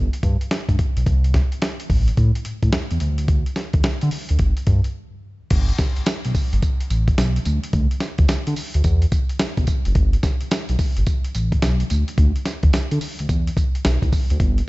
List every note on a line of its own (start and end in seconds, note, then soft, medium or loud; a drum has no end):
0.13 closed hi-hat medium
0.23 0.37 G2 loud
0.23 kick medium
0.23 closed hi-hat medium
0.41 closed hi-hat medium
0.51 snare loud
0.51 closed hi-hat medium
0.69 0.77 G2 medium
0.69 kick medium
0.69 closed hi-hat medium
0.79 kick medium
0.79 closed hi-hat medium
0.97 1.05 B1 loud
0.97 closed hi-hat medium
1.06 1.42 C2 loud
1.06 kick loud
1.06 closed hi-hat medium
1.24 closed hi-hat medium
1.34 kick medium
1.34 snare medium
1.34 closed hi-hat medium
1.52 closed hi-hat soft
1.62 snare loud
1.62 closed hi-hat medium
1.80 closed hi-hat medium
1.90 2.11 A1 loud
1.90 kick loud
1.90 open hi-hat medium
2.08 closed hi-hat medium
2.17 2.32 A2 loud
2.17 kick medium
2.17 closed hi-hat medium
2.35 closed hi-hat medium
2.45 2.53 A2 soft
2.45 closed hi-hat medium
2.63 2.71 A2 medium
2.63 kick medium
2.63 closed hi-hat medium
2.73 2.81 E2 soft
2.73 snare loud
2.73 closed hi-hat medium
2.91 2.99 E2 medium
2.91 closed hi-hat medium
3.00 3.44 D2 medium
3.00 closed hi-hat medium
3.18 closed hi-hat medium
3.28 kick loud
3.28 closed hi-hat medium
3.46 closed hi-hat soft
3.56 snare medium
3.56 closed hi-hat medium
3.73 3.82 D2 medium
3.73 kick loud
3.73 closed hi-hat soft
3.84 3.92 D3 soft
3.84 snare loud
3.84 closed hi-hat medium
4.01 4.10 D3 loud
4.01 closed hi-hat medium
4.11 open hi-hat medium
4.29 4.38 D2 medium
4.29 closed hi-hat medium
4.39 4.54 G1 loud
4.39 kick medium
4.39 closed hi-hat medium
4.57 closed hi-hat medium
4.67 4.81 G2 loud
4.67 kick medium
4.67 closed hi-hat medium
4.84 closed hi-hat medium
5.50 5.73 G1 loud
5.50 kick loud
5.50 closed hi-hat medium
5.50 crash loud
5.69 closed hi-hat medium
5.79 kick medium
5.79 snare medium
5.79 closed hi-hat medium
5.79 tambourine medium
5.96 6.01 B1 medium
5.96 closed hi-hat soft
6.06 snare loud
6.06 closed hi-hat medium
6.06 tambourine loud
6.25 6.33 B1 loud
6.25 closed hi-hat medium
6.35 kick medium
6.35 open hi-hat medium
6.35 tambourine medium
6.53 6.60 G1 medium
6.53 closed hi-hat medium
6.62 kick medium
6.62 closed hi-hat medium
6.62 tambourine medium
6.80 closed hi-hat medium
6.90 7.12 A1 medium
6.90 closed hi-hat medium
6.90 tambourine medium
7.08 kick medium
7.08 closed hi-hat medium
7.18 7.39 B1 loud
7.18 snare loud
7.18 closed hi-hat medium
7.18 tambourine loud
7.36 closed hi-hat medium
7.45 7.60 D2 medium
7.45 closed hi-hat medium
7.45 tambourine medium
7.63 closed hi-hat medium
7.73 7.87 D2 loud
7.73 kick loud
7.73 closed hi-hat medium
7.91 closed hi-hat soft
8.00 snare medium
8.00 closed hi-hat medium
8.00 tambourine medium
8.18 8.27 D2 medium
8.18 kick loud
8.18 closed hi-hat soft
8.28 8.36 D3 soft
8.28 snare loud
8.28 closed hi-hat medium
8.28 tambourine medium
8.47 8.55 D3 loud
8.47 closed hi-hat medium
8.56 open hi-hat medium
8.56 tambourine medium
8.74 8.82 D2 loud
8.74 closed hi-hat medium
8.84 9.06 E2 loud
8.84 kick medium
8.84 closed hi-hat medium
8.84 tambourine medium
9.02 closed hi-hat medium
9.12 kick loud
9.12 closed hi-hat medium
9.12 tambourine medium
9.29 closed hi-hat medium
9.39 9.47 B1 soft
9.39 snare loud
9.39 closed hi-hat medium
9.39 tambourine loud
9.57 9.65 B1 loud
9.57 kick medium
9.57 closed hi-hat medium
9.67 kick medium
9.67 closed hi-hat medium
9.67 tambourine medium
9.85 9.94 F#1 medium
9.85 closed hi-hat medium
9.95 10.17 G1 loud
9.95 kick loud
9.95 closed hi-hat medium
10.13 closed hi-hat soft
10.23 kick medium
10.23 snare medium
10.23 closed hi-hat medium
10.23 tambourine medium
10.41 10.45 B1 soft
10.41 closed hi-hat soft
10.51 snare loud
10.51 closed hi-hat medium
10.51 tambourine loud
10.69 10.77 B1 loud
10.69 closed hi-hat medium
10.79 kick medium
10.79 open hi-hat medium
10.79 tambourine medium
10.97 11.05 G1 loud
10.97 closed hi-hat medium
11.07 kick medium
11.07 closed hi-hat medium
11.07 tambourine medium
11.24 closed hi-hat medium
11.35 11.56 A1 loud
11.35 closed hi-hat medium
11.35 tambourine medium
11.52 kick medium
11.52 closed hi-hat medium
11.62 11.84 B1 loud
11.62 snare loud
11.62 closed hi-hat medium
11.62 tambourine loud
11.80 closed hi-hat medium
11.90 12.04 D2 medium
11.90 closed hi-hat medium
11.90 tambourine medium
12.08 closed hi-hat medium
12.18 12.32 D2 loud
12.18 kick loud
12.18 closed hi-hat medium
12.36 closed hi-hat soft
12.46 snare medium
12.46 closed hi-hat medium
12.46 tambourine medium
12.63 12.71 D2 medium
12.63 kick loud
12.63 closed hi-hat soft
12.73 12.81 D3 soft
12.73 snare loud
12.73 closed hi-hat medium
12.73 tambourine medium
12.91 12.99 D3 loud
12.91 closed hi-hat medium
13.01 open hi-hat medium
13.01 tambourine medium
13.19 13.27 D2 medium
13.19 closed hi-hat medium
13.29 13.51 E2 medium
13.29 kick medium
13.29 closed hi-hat medium
13.29 tambourine medium
13.47 closed hi-hat medium
13.57 kick loud
13.57 closed hi-hat medium
13.57 tambourine medium
13.75 closed hi-hat medium
13.85 13.99 B1 loud
13.85 snare loud
13.85 closed hi-hat medium
13.85 tambourine loud
14.02 14.10 C2 medium
14.02 kick medium
14.02 closed hi-hat medium
14.12 kick medium
14.12 open hi-hat medium
14.12 tambourine medium
14.30 14.38 D2 loud
14.30 closed hi-hat medium
14.40 14.62 G1 loud
14.40 kick loud
14.40 closed hi-hat medium
14.58 closed hi-hat soft